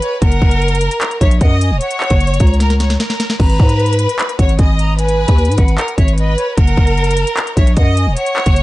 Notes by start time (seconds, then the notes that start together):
Already playing: B4
0.02 C#5, closed hi-hat
0.22 F#1 A#4 F#5, kick, closed hi-hat
0.32 closed hi-hat
0.42 F#1, kick
0.51 closed hi-hat
0.62 closed hi-hat
0.68 closed hi-hat
0.75 closed hi-hat
0.81 A#5, closed hi-hat
0.91 closed hi-hat
1.01 clap, closed hi-hat
1.11 closed hi-hat
1.21 A#1 C#5 E5, kick, closed hi-hat
1.31 closed hi-hat
1.41 F#2 D#5 F#5, kick, closed hi-hat
1.61 G#5, closed hi-hat
1.71 E1
1.81 C#5 F#5, closed hi-hat
1.91 closed hi-hat
2.01 clap
2.10 F#1, kick, closed hi-hat
2.21 closed hi-hat
2.27 closed hi-hat
2.34 closed hi-hat
2.40 C#2 A#5, kick, closed hi-hat, open hi-hat
2.47 closed hi-hat
2.54 closed hi-hat
2.60 A#4, snare, closed hi-hat
2.70 snare, closed hi-hat
2.80 C#5, snare, closed hi-hat
2.90 snare, closed hi-hat
3.00 A#4, snare, closed hi-hat
3.10 snare, closed hi-hat
3.20 snare, closed hi-hat
3.30 snare
3.40 G#1 B4 A#5, kick, crash
3.50 closed hi-hat
3.60 G#2, kick
3.69 closed hi-hat
3.79 closed hi-hat
3.86 closed hi-hat
3.93 closed hi-hat
3.99 B5, closed hi-hat
4.09 closed hi-hat
4.19 clap, closed hi-hat
4.29 closed hi-hat
4.39 G#1 C#5 F#5, kick, closed hi-hat
4.49 closed hi-hat
4.58 G#1 D#5 G#5, kick, closed hi-hat
4.79 A#5, closed hi-hat
4.98 B4 G#5, closed hi-hat
5.08 closed hi-hat
5.28 D#2, kick, closed hi-hat
5.38 closed hi-hat
5.45 G#2, closed hi-hat
5.52 closed hi-hat
5.58 G#1 F#5, kick, closed hi-hat
5.68 closed hi-hat
5.78 A#4, clap, closed hi-hat
5.88 closed hi-hat
5.98 G#1 C#5 E5, kick, closed hi-hat
6.08 closed hi-hat
6.18 B4 D#5, closed hi-hat
6.38 C#5, closed hi-hat
6.57 F#1 A#4 F#5, kick, closed hi-hat
6.67 closed hi-hat
6.77 F#1, kick
6.87 closed hi-hat
6.97 closed hi-hat
7.04 closed hi-hat
7.11 closed hi-hat
7.17 A#5, closed hi-hat
7.27 closed hi-hat
7.37 clap, closed hi-hat
7.47 closed hi-hat
7.57 A#1 C#5 E5, kick, closed hi-hat
7.67 closed hi-hat
7.76 F#2 D#5 F#5, kick, closed hi-hat
7.97 G#5, closed hi-hat
8.07 E1
8.16 C#5 F#5, closed hi-hat
8.26 closed hi-hat
8.36 clap
8.46 F#1, kick, closed hi-hat
8.56 closed hi-hat